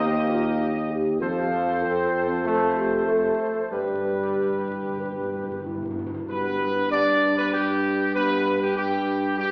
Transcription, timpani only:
3.71 3.78 G2 soft
3.79 3.85 G2 soft
3.87 3.93 G2 soft
3.95 4.01 G2 soft
4.03 4.09 G2 soft
4.10 4.17 G2 soft
4.18 4.25 G2 soft
4.26 4.33 G2 soft
4.42 4.48 G2 soft
4.50 4.57 G2 soft
4.58 4.65 G2 soft
4.66 4.72 G2 medium
4.73 4.80 G2 medium
4.81 4.88 G2 medium
4.89 4.96 G2 medium
4.97 5.04 G2 medium
5.05 5.11 G2 medium
5.13 5.19 G2 medium
5.20 5.28 G2 medium
5.29 5.35 G2 medium
5.36 5.42 G2 medium
5.44 5.50 G2 medium
5.51 5.58 G2 medium
5.59 5.65 G2 medium
5.66 5.73 G2 medium
5.75 5.81 G2 medium
5.82 5.89 G2 medium
5.91 5.98 G2 medium
5.99 6.05 G2 medium
6.06 6.13 G2 loud
6.14 6.21 G2 loud
6.29 7.18 G2 medium

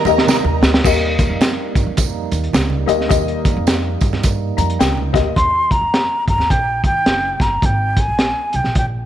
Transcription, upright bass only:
0.05 0.39 D#2 loud
0.44 0.59 D#2 medium
0.61 0.80 D2 medium
0.84 1.23 D#2 medium
1.30 1.54 F2 medium
1.75 1.85 G2 medium
1.86 2.25 F2 medium
2.32 2.50 D#2 medium
2.53 2.83 C#2 medium
2.88 3.07 D2 medium
3.11 3.49 D#2 medium
3.57 3.95 F2 medium
4.01 4.49 G2 medium
4.58 4.76 F2 medium
4.80 5.09 C#2 medium
5.14 5.33 D2 medium
5.37 5.75 D#2 medium
5.81 6.05 F2 medium
6.28 6.37 G2 medium
6.38 6.47 D#2 medium
6.51 6.79 A#1 medium
6.84 7.02 D#3 medium
7.06 7.35 F#1 medium
7.40 7.59 G1 medium
7.63 8.01 G#1 medium
8.08 8.32 A#1 medium
8.54 8.63 C2 medium
8.64 9.03 A#1 medium

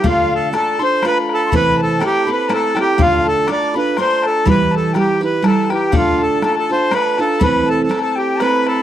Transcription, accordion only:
0.08 0.34 F4 medium
0.35 0.54 A4 medium
0.56 0.82 A4 medium
0.84 1.05 C5 medium
1.07 1.18 B4 loud
1.34 1.55 A4 medium
1.56 1.81 B4 loud
1.83 2.04 A4 medium
2.06 2.30 G4 medium
2.32 2.53 B4 medium
2.54 2.79 A4 medium
2.81 3.02 G4 medium
3.01 3.27 F4 loud
3.28 3.50 A4 loud
3.52 3.75 D5 medium
3.78 3.97 B4 medium
4.00 4.26 C5 medium
4.26 4.48 A4 medium
4.50 4.75 B4 medium
4.76 4.98 A4 medium
4.99 5.22 G4 medium
5.25 5.44 B4 medium
5.47 5.70 A4 medium
5.74 5.95 G4 medium
5.97 6.22 F4 loud
6.23 6.44 A4 medium
6.45 6.55 A4 medium
6.59 6.71 A4 medium
6.72 6.94 C5 medium
6.94 7.20 B4 medium
7.21 7.43 A4 medium
7.43 7.69 B4 loud
7.70 7.82 A4 medium
7.84 7.99 A4 medium
8.02 8.18 A4 medium
8.18 8.40 G4 medium
8.41 8.67 B4 medium
8.67 8.82 A4 medium

